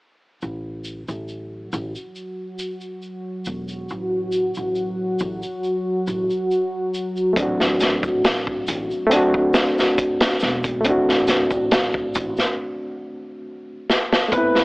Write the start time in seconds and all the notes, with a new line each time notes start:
0.41 A1 F#3 F#4, shaker
0.84 shaker
1.08 A1, shaker
1.28 shaker
1.73 A1, shaker
1.95 shaker
2.16 shaker
2.59 shaker
2.81 shaker
3.02 shaker
3.45 E1, shaker
3.68 shaker
3.89 A1, shaker
4.32 shaker
4.55 A1, shaker
4.75 shaker
5.19 A1, shaker
5.43 shaker
5.63 shaker
6.07 A1, shaker
6.30 shaker
6.51 shaker
6.94 shaker
7.16 shaker
7.33 A1 A3 C4, kick, closed hi-hat
7.38 D4, shaker
7.42 F#4
7.60 snare
7.80 snare, closed hi-hat, shaker
8.03 A1, kick, shaker
8.24 snare, closed hi-hat, shaker
8.47 kick
8.67 A1, closed hi-hat, shaker
8.91 shaker
9.07 A3 C4
9.11 D4, closed hi-hat, shaker
9.16 F#4
9.34 kick
9.54 snare, closed hi-hat, shaker
9.78 snare, shaker
9.97 kick, closed hi-hat, shaker
10.20 snare, closed hi-hat
10.40 E1, snare, shaker
10.63 kick, closed hi-hat, shaker
10.81 A3 C4, closed hi-hat, shaker
10.86 A1 D4, kick
10.91 F#4
11.09 snare
11.27 snare, closed hi-hat, shaker
11.50 A1, kick, shaker
11.71 snare, closed hi-hat, shaker
11.94 kick
12.15 A1, kick, closed hi-hat, shaker
12.37 snare, shaker
13.90 snare
14.12 snare
14.28 A3 B3, kick, closed hi-hat, shaker
14.32 A1 C4 B4
14.37 E4
14.55 snare